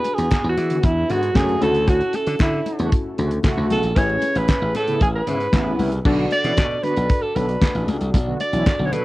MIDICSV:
0, 0, Header, 1, 6, 480
1, 0, Start_track
1, 0, Tempo, 521739
1, 1729, Time_signature, 4, 2, 24, 8
1, 8323, End_track
2, 0, Start_track
2, 0, Title_t, "Alto saxophone"
2, 0, Program_c, 0, 65
2, 0, Note_on_c, 0, 71, 99
2, 131, Note_on_c, 0, 68, 94
2, 145, Note_off_c, 0, 71, 0
2, 447, Note_off_c, 0, 68, 0
2, 453, Note_on_c, 0, 66, 90
2, 774, Note_on_c, 0, 64, 91
2, 788, Note_off_c, 0, 66, 0
2, 1017, Note_on_c, 0, 66, 88
2, 1031, Note_off_c, 0, 64, 0
2, 1253, Note_on_c, 0, 68, 90
2, 1267, Note_off_c, 0, 66, 0
2, 1500, Note_on_c, 0, 69, 92
2, 1514, Note_off_c, 0, 68, 0
2, 1738, Note_on_c, 0, 66, 91
2, 1751, Note_off_c, 0, 69, 0
2, 1983, Note_on_c, 0, 69, 89
2, 1997, Note_off_c, 0, 66, 0
2, 2216, Note_off_c, 0, 69, 0
2, 2227, Note_on_c, 0, 64, 74
2, 2665, Note_off_c, 0, 64, 0
2, 3425, Note_on_c, 0, 69, 104
2, 3660, Note_on_c, 0, 73, 108
2, 3674, Note_off_c, 0, 69, 0
2, 4022, Note_on_c, 0, 71, 102
2, 4036, Note_off_c, 0, 73, 0
2, 4376, Note_off_c, 0, 71, 0
2, 4383, Note_on_c, 0, 69, 99
2, 4599, Note_off_c, 0, 69, 0
2, 4619, Note_on_c, 0, 68, 99
2, 4671, Note_off_c, 0, 68, 0
2, 4742, Note_on_c, 0, 71, 99
2, 5539, Note_off_c, 0, 71, 0
2, 5816, Note_on_c, 0, 74, 112
2, 6287, Note_on_c, 0, 71, 115
2, 6301, Note_off_c, 0, 74, 0
2, 6645, Note_on_c, 0, 69, 97
2, 6659, Note_off_c, 0, 71, 0
2, 6771, Note_on_c, 0, 71, 93
2, 6785, Note_off_c, 0, 69, 0
2, 7250, Note_off_c, 0, 71, 0
2, 7734, Note_on_c, 0, 74, 97
2, 8150, Note_on_c, 0, 73, 68
2, 8163, Note_off_c, 0, 74, 0
2, 8208, Note_on_c, 0, 71, 101
2, 8222, Note_off_c, 0, 73, 0
2, 8323, Note_off_c, 0, 71, 0
2, 8323, End_track
3, 0, Start_track
3, 0, Title_t, "Analog polysynth"
3, 0, Program_c, 1, 90
3, 0, Note_on_c, 1, 59, 70
3, 0, Note_on_c, 1, 62, 64
3, 0, Note_on_c, 1, 66, 63
3, 0, Note_on_c, 1, 68, 72
3, 1450, Note_off_c, 1, 59, 0
3, 1453, Note_off_c, 1, 62, 0
3, 1456, Note_off_c, 1, 66, 0
3, 1458, Note_off_c, 1, 68, 0
3, 1484, Note_on_c, 1, 61, 73
3, 1489, Note_on_c, 1, 64, 65
3, 1492, Note_on_c, 1, 66, 62
3, 1498, Note_on_c, 1, 69, 76
3, 3610, Note_off_c, 1, 61, 0
3, 3612, Note_off_c, 1, 64, 0
3, 3613, Note_off_c, 1, 66, 0
3, 3617, Note_off_c, 1, 69, 0
3, 3643, Note_on_c, 1, 61, 68
3, 3650, Note_on_c, 1, 64, 59
3, 3654, Note_on_c, 1, 68, 63
3, 3658, Note_on_c, 1, 71, 78
3, 5529, Note_off_c, 1, 61, 0
3, 5533, Note_off_c, 1, 64, 0
3, 5535, Note_off_c, 1, 68, 0
3, 5536, Note_off_c, 1, 71, 0
3, 5566, Note_on_c, 1, 62, 82
3, 5569, Note_on_c, 1, 66, 71
3, 5574, Note_on_c, 1, 69, 78
3, 5579, Note_on_c, 1, 74, 89
3, 8323, Note_off_c, 1, 62, 0
3, 8323, Note_off_c, 1, 66, 0
3, 8323, Note_off_c, 1, 69, 0
3, 8323, Note_off_c, 1, 74, 0
3, 8323, End_track
4, 0, Start_track
4, 0, Title_t, "Analog polysynth"
4, 0, Program_c, 2, 90
4, 649, Note_on_c, 2, 50, 83
4, 650, Note_on_c, 2, 59, 90
4, 652, Note_on_c, 2, 66, 95
4, 751, Note_off_c, 2, 50, 0
4, 751, Note_off_c, 2, 59, 0
4, 753, Note_off_c, 2, 66, 0
4, 1006, Note_on_c, 2, 59, 80
4, 1009, Note_on_c, 2, 50, 80
4, 1009, Note_on_c, 2, 66, 94
4, 1110, Note_off_c, 2, 59, 0
4, 1111, Note_off_c, 2, 50, 0
4, 1111, Note_off_c, 2, 66, 0
4, 1248, Note_on_c, 2, 49, 99
4, 1249, Note_on_c, 2, 66, 102
4, 1251, Note_on_c, 2, 57, 90
4, 1591, Note_off_c, 2, 49, 0
4, 1591, Note_off_c, 2, 66, 0
4, 1592, Note_off_c, 2, 57, 0
4, 2570, Note_on_c, 2, 49, 88
4, 2570, Note_on_c, 2, 57, 91
4, 2572, Note_on_c, 2, 66, 95
4, 2671, Note_off_c, 2, 49, 0
4, 2672, Note_off_c, 2, 57, 0
4, 2673, Note_off_c, 2, 66, 0
4, 2935, Note_on_c, 2, 49, 81
4, 2935, Note_on_c, 2, 57, 87
4, 2935, Note_on_c, 2, 66, 90
4, 3034, Note_off_c, 2, 49, 0
4, 3034, Note_off_c, 2, 57, 0
4, 3035, Note_off_c, 2, 66, 0
4, 3168, Note_on_c, 2, 66, 111
4, 3169, Note_on_c, 2, 49, 95
4, 3170, Note_on_c, 2, 57, 95
4, 3511, Note_off_c, 2, 49, 0
4, 3511, Note_off_c, 2, 66, 0
4, 3512, Note_off_c, 2, 57, 0
4, 4489, Note_on_c, 2, 64, 98
4, 4490, Note_on_c, 2, 59, 85
4, 4491, Note_on_c, 2, 49, 86
4, 4591, Note_off_c, 2, 59, 0
4, 4591, Note_off_c, 2, 64, 0
4, 4592, Note_off_c, 2, 49, 0
4, 4843, Note_on_c, 2, 64, 86
4, 4845, Note_on_c, 2, 49, 84
4, 4845, Note_on_c, 2, 59, 80
4, 4948, Note_off_c, 2, 64, 0
4, 4949, Note_off_c, 2, 49, 0
4, 4949, Note_off_c, 2, 59, 0
4, 5084, Note_on_c, 2, 49, 95
4, 5085, Note_on_c, 2, 64, 103
4, 5087, Note_on_c, 2, 59, 96
4, 5429, Note_off_c, 2, 49, 0
4, 5429, Note_off_c, 2, 64, 0
4, 5430, Note_off_c, 2, 59, 0
4, 5566, Note_on_c, 2, 50, 109
4, 5567, Note_on_c, 2, 59, 107
4, 5567, Note_on_c, 2, 66, 113
4, 5759, Note_off_c, 2, 50, 0
4, 5760, Note_off_c, 2, 59, 0
4, 5760, Note_off_c, 2, 66, 0
4, 5923, Note_on_c, 2, 61, 84
4, 5924, Note_on_c, 2, 64, 86
4, 5925, Note_on_c, 2, 52, 75
4, 6021, Note_off_c, 2, 61, 0
4, 6022, Note_off_c, 2, 52, 0
4, 6022, Note_off_c, 2, 64, 0
4, 6286, Note_on_c, 2, 59, 87
4, 6286, Note_on_c, 2, 66, 99
4, 6288, Note_on_c, 2, 50, 93
4, 6383, Note_off_c, 2, 59, 0
4, 6383, Note_off_c, 2, 66, 0
4, 6384, Note_off_c, 2, 50, 0
4, 6768, Note_on_c, 2, 69, 96
4, 6769, Note_on_c, 2, 54, 85
4, 6769, Note_on_c, 2, 62, 87
4, 6864, Note_off_c, 2, 69, 0
4, 6865, Note_off_c, 2, 54, 0
4, 6865, Note_off_c, 2, 62, 0
4, 7610, Note_on_c, 2, 66, 87
4, 7612, Note_on_c, 2, 50, 79
4, 7612, Note_on_c, 2, 59, 74
4, 7706, Note_off_c, 2, 66, 0
4, 7707, Note_off_c, 2, 50, 0
4, 7707, Note_off_c, 2, 59, 0
4, 7848, Note_on_c, 2, 61, 84
4, 7848, Note_on_c, 2, 64, 94
4, 7849, Note_on_c, 2, 52, 81
4, 7944, Note_off_c, 2, 61, 0
4, 7945, Note_off_c, 2, 52, 0
4, 7945, Note_off_c, 2, 64, 0
4, 8085, Note_on_c, 2, 66, 95
4, 8087, Note_on_c, 2, 59, 89
4, 8088, Note_on_c, 2, 50, 86
4, 8183, Note_off_c, 2, 66, 0
4, 8184, Note_off_c, 2, 50, 0
4, 8184, Note_off_c, 2, 59, 0
4, 8204, Note_on_c, 2, 54, 80
4, 8204, Note_on_c, 2, 62, 81
4, 8205, Note_on_c, 2, 69, 90
4, 8302, Note_off_c, 2, 54, 0
4, 8302, Note_off_c, 2, 62, 0
4, 8303, Note_off_c, 2, 69, 0
4, 8323, End_track
5, 0, Start_track
5, 0, Title_t, "Slap bass"
5, 0, Program_c, 3, 36
5, 168, Note_on_c, 3, 40, 95
5, 258, Note_off_c, 3, 40, 0
5, 407, Note_on_c, 3, 40, 104
5, 497, Note_off_c, 3, 40, 0
5, 529, Note_on_c, 3, 52, 101
5, 708, Note_off_c, 3, 52, 0
5, 770, Note_on_c, 3, 40, 100
5, 949, Note_off_c, 3, 40, 0
5, 1011, Note_on_c, 3, 44, 92
5, 1189, Note_off_c, 3, 44, 0
5, 1247, Note_on_c, 3, 42, 98
5, 1427, Note_off_c, 3, 42, 0
5, 1487, Note_on_c, 3, 38, 99
5, 1846, Note_off_c, 3, 38, 0
5, 2090, Note_on_c, 3, 50, 97
5, 2179, Note_off_c, 3, 50, 0
5, 2209, Note_on_c, 3, 50, 103
5, 2388, Note_off_c, 3, 50, 0
5, 2571, Note_on_c, 3, 40, 91
5, 2660, Note_off_c, 3, 40, 0
5, 2932, Note_on_c, 3, 38, 94
5, 3110, Note_off_c, 3, 38, 0
5, 3288, Note_on_c, 3, 38, 83
5, 3378, Note_off_c, 3, 38, 0
5, 3408, Note_on_c, 3, 35, 86
5, 3498, Note_off_c, 3, 35, 0
5, 3528, Note_on_c, 3, 34, 89
5, 3618, Note_off_c, 3, 34, 0
5, 3646, Note_on_c, 3, 33, 106
5, 3826, Note_off_c, 3, 33, 0
5, 4007, Note_on_c, 3, 33, 94
5, 4097, Note_off_c, 3, 33, 0
5, 4248, Note_on_c, 3, 33, 108
5, 4338, Note_off_c, 3, 33, 0
5, 4368, Note_on_c, 3, 45, 107
5, 4547, Note_off_c, 3, 45, 0
5, 4610, Note_on_c, 3, 33, 100
5, 4788, Note_off_c, 3, 33, 0
5, 4847, Note_on_c, 3, 44, 95
5, 5027, Note_off_c, 3, 44, 0
5, 5085, Note_on_c, 3, 33, 99
5, 5265, Note_off_c, 3, 33, 0
5, 5324, Note_on_c, 3, 36, 92
5, 5505, Note_off_c, 3, 36, 0
5, 5568, Note_on_c, 3, 35, 120
5, 5747, Note_off_c, 3, 35, 0
5, 5927, Note_on_c, 3, 47, 100
5, 6017, Note_off_c, 3, 47, 0
5, 6049, Note_on_c, 3, 47, 117
5, 6228, Note_off_c, 3, 47, 0
5, 6413, Note_on_c, 3, 35, 100
5, 6501, Note_off_c, 3, 35, 0
5, 6771, Note_on_c, 3, 35, 99
5, 6949, Note_off_c, 3, 35, 0
5, 7129, Note_on_c, 3, 33, 86
5, 7219, Note_off_c, 3, 33, 0
5, 7248, Note_on_c, 3, 37, 94
5, 7338, Note_off_c, 3, 37, 0
5, 7370, Note_on_c, 3, 36, 92
5, 7459, Note_off_c, 3, 36, 0
5, 7490, Note_on_c, 3, 35, 110
5, 7668, Note_off_c, 3, 35, 0
5, 7846, Note_on_c, 3, 35, 91
5, 7937, Note_off_c, 3, 35, 0
5, 8088, Note_on_c, 3, 35, 109
5, 8178, Note_off_c, 3, 35, 0
5, 8206, Note_on_c, 3, 47, 109
5, 8323, Note_off_c, 3, 47, 0
5, 8323, End_track
6, 0, Start_track
6, 0, Title_t, "Drums"
6, 41, Note_on_c, 9, 42, 79
6, 47, Note_on_c, 9, 62, 53
6, 133, Note_off_c, 9, 42, 0
6, 139, Note_off_c, 9, 62, 0
6, 167, Note_on_c, 9, 42, 64
6, 259, Note_off_c, 9, 42, 0
6, 283, Note_on_c, 9, 63, 74
6, 289, Note_on_c, 9, 36, 108
6, 290, Note_on_c, 9, 38, 117
6, 301, Note_on_c, 9, 39, 100
6, 375, Note_off_c, 9, 63, 0
6, 381, Note_off_c, 9, 36, 0
6, 382, Note_off_c, 9, 38, 0
6, 393, Note_off_c, 9, 39, 0
6, 529, Note_on_c, 9, 62, 58
6, 532, Note_on_c, 9, 42, 76
6, 621, Note_off_c, 9, 62, 0
6, 624, Note_off_c, 9, 42, 0
6, 645, Note_on_c, 9, 42, 58
6, 737, Note_off_c, 9, 42, 0
6, 767, Note_on_c, 9, 42, 81
6, 770, Note_on_c, 9, 36, 112
6, 859, Note_off_c, 9, 42, 0
6, 862, Note_off_c, 9, 36, 0
6, 1011, Note_on_c, 9, 42, 75
6, 1013, Note_on_c, 9, 64, 74
6, 1103, Note_off_c, 9, 42, 0
6, 1105, Note_off_c, 9, 64, 0
6, 1130, Note_on_c, 9, 42, 45
6, 1222, Note_off_c, 9, 42, 0
6, 1239, Note_on_c, 9, 63, 76
6, 1247, Note_on_c, 9, 36, 117
6, 1249, Note_on_c, 9, 38, 117
6, 1260, Note_on_c, 9, 39, 98
6, 1331, Note_off_c, 9, 63, 0
6, 1339, Note_off_c, 9, 36, 0
6, 1341, Note_off_c, 9, 38, 0
6, 1352, Note_off_c, 9, 39, 0
6, 1369, Note_on_c, 9, 42, 36
6, 1461, Note_off_c, 9, 42, 0
6, 1487, Note_on_c, 9, 42, 69
6, 1491, Note_on_c, 9, 63, 76
6, 1579, Note_off_c, 9, 42, 0
6, 1583, Note_off_c, 9, 63, 0
6, 1605, Note_on_c, 9, 42, 51
6, 1697, Note_off_c, 9, 42, 0
6, 1724, Note_on_c, 9, 62, 37
6, 1726, Note_on_c, 9, 42, 104
6, 1727, Note_on_c, 9, 36, 113
6, 1816, Note_off_c, 9, 62, 0
6, 1818, Note_off_c, 9, 42, 0
6, 1819, Note_off_c, 9, 36, 0
6, 1846, Note_on_c, 9, 42, 39
6, 1938, Note_off_c, 9, 42, 0
6, 1961, Note_on_c, 9, 42, 75
6, 1969, Note_on_c, 9, 62, 58
6, 2053, Note_off_c, 9, 42, 0
6, 2061, Note_off_c, 9, 62, 0
6, 2085, Note_on_c, 9, 42, 66
6, 2177, Note_off_c, 9, 42, 0
6, 2201, Note_on_c, 9, 63, 75
6, 2209, Note_on_c, 9, 36, 117
6, 2209, Note_on_c, 9, 38, 118
6, 2220, Note_on_c, 9, 39, 105
6, 2293, Note_off_c, 9, 63, 0
6, 2301, Note_off_c, 9, 36, 0
6, 2301, Note_off_c, 9, 38, 0
6, 2312, Note_off_c, 9, 39, 0
6, 2448, Note_on_c, 9, 62, 55
6, 2451, Note_on_c, 9, 42, 77
6, 2540, Note_off_c, 9, 62, 0
6, 2543, Note_off_c, 9, 42, 0
6, 2566, Note_on_c, 9, 42, 56
6, 2658, Note_off_c, 9, 42, 0
6, 2688, Note_on_c, 9, 42, 84
6, 2690, Note_on_c, 9, 36, 115
6, 2780, Note_off_c, 9, 42, 0
6, 2782, Note_off_c, 9, 36, 0
6, 2928, Note_on_c, 9, 42, 72
6, 2933, Note_on_c, 9, 64, 70
6, 3020, Note_off_c, 9, 42, 0
6, 3025, Note_off_c, 9, 64, 0
6, 3046, Note_on_c, 9, 42, 44
6, 3138, Note_off_c, 9, 42, 0
6, 3158, Note_on_c, 9, 63, 73
6, 3166, Note_on_c, 9, 36, 115
6, 3168, Note_on_c, 9, 38, 127
6, 3179, Note_on_c, 9, 39, 91
6, 3250, Note_off_c, 9, 63, 0
6, 3258, Note_off_c, 9, 36, 0
6, 3260, Note_off_c, 9, 38, 0
6, 3271, Note_off_c, 9, 39, 0
6, 3407, Note_on_c, 9, 42, 67
6, 3410, Note_on_c, 9, 63, 73
6, 3499, Note_off_c, 9, 42, 0
6, 3502, Note_off_c, 9, 63, 0
6, 3523, Note_on_c, 9, 42, 50
6, 3615, Note_off_c, 9, 42, 0
6, 3644, Note_on_c, 9, 62, 37
6, 3645, Note_on_c, 9, 42, 112
6, 3647, Note_on_c, 9, 36, 116
6, 3736, Note_off_c, 9, 62, 0
6, 3737, Note_off_c, 9, 42, 0
6, 3739, Note_off_c, 9, 36, 0
6, 3766, Note_on_c, 9, 42, 37
6, 3858, Note_off_c, 9, 42, 0
6, 3880, Note_on_c, 9, 42, 79
6, 3886, Note_on_c, 9, 62, 58
6, 3972, Note_off_c, 9, 42, 0
6, 3978, Note_off_c, 9, 62, 0
6, 4004, Note_on_c, 9, 42, 66
6, 4096, Note_off_c, 9, 42, 0
6, 4121, Note_on_c, 9, 63, 77
6, 4127, Note_on_c, 9, 38, 117
6, 4128, Note_on_c, 9, 36, 109
6, 4138, Note_on_c, 9, 39, 104
6, 4213, Note_off_c, 9, 63, 0
6, 4219, Note_off_c, 9, 38, 0
6, 4220, Note_off_c, 9, 36, 0
6, 4230, Note_off_c, 9, 39, 0
6, 4367, Note_on_c, 9, 62, 56
6, 4368, Note_on_c, 9, 42, 78
6, 4459, Note_off_c, 9, 62, 0
6, 4460, Note_off_c, 9, 42, 0
6, 4485, Note_on_c, 9, 42, 56
6, 4577, Note_off_c, 9, 42, 0
6, 4606, Note_on_c, 9, 42, 84
6, 4609, Note_on_c, 9, 36, 114
6, 4698, Note_off_c, 9, 42, 0
6, 4701, Note_off_c, 9, 36, 0
6, 4848, Note_on_c, 9, 42, 75
6, 4851, Note_on_c, 9, 64, 75
6, 4940, Note_off_c, 9, 42, 0
6, 4943, Note_off_c, 9, 64, 0
6, 4970, Note_on_c, 9, 42, 45
6, 5062, Note_off_c, 9, 42, 0
6, 5082, Note_on_c, 9, 63, 74
6, 5086, Note_on_c, 9, 36, 115
6, 5089, Note_on_c, 9, 38, 122
6, 5100, Note_on_c, 9, 39, 95
6, 5174, Note_off_c, 9, 63, 0
6, 5178, Note_off_c, 9, 36, 0
6, 5181, Note_off_c, 9, 38, 0
6, 5192, Note_off_c, 9, 39, 0
6, 5329, Note_on_c, 9, 46, 64
6, 5335, Note_on_c, 9, 63, 79
6, 5421, Note_off_c, 9, 46, 0
6, 5427, Note_off_c, 9, 63, 0
6, 5444, Note_on_c, 9, 42, 52
6, 5536, Note_off_c, 9, 42, 0
6, 5567, Note_on_c, 9, 36, 115
6, 5567, Note_on_c, 9, 49, 109
6, 5659, Note_off_c, 9, 36, 0
6, 5659, Note_off_c, 9, 49, 0
6, 5802, Note_on_c, 9, 42, 77
6, 5809, Note_on_c, 9, 62, 58
6, 5894, Note_off_c, 9, 42, 0
6, 5901, Note_off_c, 9, 62, 0
6, 5927, Note_on_c, 9, 42, 64
6, 6019, Note_off_c, 9, 42, 0
6, 6044, Note_on_c, 9, 63, 73
6, 6050, Note_on_c, 9, 36, 114
6, 6052, Note_on_c, 9, 38, 120
6, 6063, Note_on_c, 9, 39, 104
6, 6136, Note_off_c, 9, 63, 0
6, 6142, Note_off_c, 9, 36, 0
6, 6144, Note_off_c, 9, 38, 0
6, 6155, Note_off_c, 9, 39, 0
6, 6171, Note_on_c, 9, 42, 39
6, 6263, Note_off_c, 9, 42, 0
6, 6288, Note_on_c, 9, 62, 58
6, 6292, Note_on_c, 9, 42, 80
6, 6380, Note_off_c, 9, 62, 0
6, 6384, Note_off_c, 9, 42, 0
6, 6409, Note_on_c, 9, 42, 60
6, 6501, Note_off_c, 9, 42, 0
6, 6529, Note_on_c, 9, 42, 91
6, 6531, Note_on_c, 9, 36, 115
6, 6621, Note_off_c, 9, 42, 0
6, 6623, Note_off_c, 9, 36, 0
6, 6771, Note_on_c, 9, 64, 72
6, 6772, Note_on_c, 9, 42, 76
6, 6863, Note_off_c, 9, 64, 0
6, 6864, Note_off_c, 9, 42, 0
6, 6889, Note_on_c, 9, 42, 44
6, 6981, Note_off_c, 9, 42, 0
6, 7003, Note_on_c, 9, 63, 75
6, 7007, Note_on_c, 9, 36, 121
6, 7012, Note_on_c, 9, 38, 121
6, 7023, Note_on_c, 9, 39, 105
6, 7095, Note_off_c, 9, 63, 0
6, 7099, Note_off_c, 9, 36, 0
6, 7104, Note_off_c, 9, 38, 0
6, 7115, Note_off_c, 9, 39, 0
6, 7129, Note_on_c, 9, 42, 38
6, 7221, Note_off_c, 9, 42, 0
6, 7251, Note_on_c, 9, 42, 70
6, 7254, Note_on_c, 9, 63, 76
6, 7343, Note_off_c, 9, 42, 0
6, 7346, Note_off_c, 9, 63, 0
6, 7367, Note_on_c, 9, 42, 53
6, 7459, Note_off_c, 9, 42, 0
6, 7489, Note_on_c, 9, 62, 38
6, 7490, Note_on_c, 9, 36, 115
6, 7493, Note_on_c, 9, 42, 117
6, 7581, Note_off_c, 9, 62, 0
6, 7582, Note_off_c, 9, 36, 0
6, 7585, Note_off_c, 9, 42, 0
6, 7729, Note_on_c, 9, 42, 81
6, 7732, Note_on_c, 9, 62, 56
6, 7821, Note_off_c, 9, 42, 0
6, 7824, Note_off_c, 9, 62, 0
6, 7849, Note_on_c, 9, 42, 63
6, 7941, Note_off_c, 9, 42, 0
6, 7968, Note_on_c, 9, 63, 77
6, 7971, Note_on_c, 9, 36, 113
6, 7974, Note_on_c, 9, 38, 127
6, 7985, Note_on_c, 9, 39, 97
6, 8060, Note_off_c, 9, 63, 0
6, 8063, Note_off_c, 9, 36, 0
6, 8066, Note_off_c, 9, 38, 0
6, 8077, Note_off_c, 9, 39, 0
6, 8212, Note_on_c, 9, 62, 61
6, 8212, Note_on_c, 9, 64, 80
6, 8213, Note_on_c, 9, 42, 82
6, 8304, Note_off_c, 9, 62, 0
6, 8304, Note_off_c, 9, 64, 0
6, 8305, Note_off_c, 9, 42, 0
6, 8323, End_track
0, 0, End_of_file